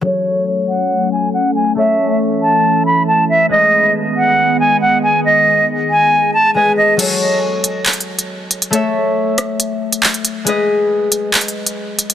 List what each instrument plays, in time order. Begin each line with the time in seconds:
0.01 harp F#3 F#4 A4, ambient pad F#3 A3 C#4 A4, flute C#5
0.06 harp C#5
0.69 flute F#5
1.12 flute G#5
1.34 flute F#5
1.56 flute G#5
1.75 ambient pad E3, harp A3 A4 C#5, flute E5
1.79 harp E5
2.42 flute A5
2.86 flute B5
3.08 flute A5
3.29 flute E5
3.49 ambient pad D#3 G#3 B3 G#4, harp G#3 G#4 B4, flute D#5
3.53 harp D#5
4.17 flute F#5
4.60 flute G#5
4.81 flute F#5
5.03 flute G#5
5.25 flute D#5
5.90 flute G#5
6.34 flute A5
6.54 harp G#3 G#4 B4 D#5, flute G#5
6.77 flute D#5
6.97 harp F#3 F#4 A4, closed hi-hat, crash
7.01 harp C#5
7.64 closed hi-hat
7.86 clap, closed hi-hat
7.93 closed hi-hat
8.00 closed hi-hat
8.19 closed hi-hat
8.51 closed hi-hat
8.62 closed hi-hat
8.70 harp A3 A4 C#5, closed hi-hat
8.75 harp E5
9.38 cross-stick, closed hi-hat
9.60 closed hi-hat
9.93 closed hi-hat
10.03 clap
10.14 closed hi-hat
10.25 closed hi-hat
10.45 harp G#3 G#4 B4, closed hi-hat
10.49 harp D#5
11.12 closed hi-hat
11.34 clap, closed hi-hat
11.41 closed hi-hat
11.48 closed hi-hat
11.66 closed hi-hat
11.99 closed hi-hat
12.10 closed hi-hat